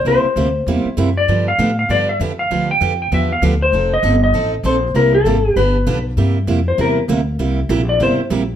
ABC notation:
X:1
M:4/4
L:1/8
Q:"Swing" 1/4=196
K:Cmix
V:1 name="Electric slide guitar"
c6- c d- | d f2 f d e z f- | f g2 g e f z c- | c _e2 e2 z c2 |
B A3 =B3 z | z3 c B z3 | z3 d c z3 |]
V:2 name="Steel-string acoustic guitar"
[C,G,B,EG] z [C,G,B,EG] z [C,G,B,EG] z [C,G,B,EG] z | [D,F,=B,DG] z [D,F,B,DG] z [D,F,B,DG] z [D,F,B,DG] z | [D,F,=B,DG] z [D,F,B,DG] z [D,F,B,DG] z [D,F,B,DG] z | [F,C_EA] z [F,CEA] z [F,CEA] z [F,CEA] z |
[C,G,B,EG] z [C,G,B,EG] z [D,F,=B,DG] z [D,F,B,DG] z | [C,G,B,EG] z [C,G,B,EG] z [C,G,B,EG] z [C,G,B,EG] z | [C,G,B,EG] z [C,G,B,EG] z [C,G,B,EG] z [C,G,B,EG] z |]
V:3 name="Upright bass" clef=bass
C,, z D,,2 E,, z ^F,,2 | G,,2 A,,2 G,,2 F,,2 | D,,2 F,,2 E,,2 D,,2 | F,,,2 G,,,2 A,,,2 B,,,2 |
C,,2 _A,,,2 G,,,2 =B,,,2 | G,,2 F,,2 E,,2 D,,2 | C,,2 B,,,2 G,,, z B,,,2 |]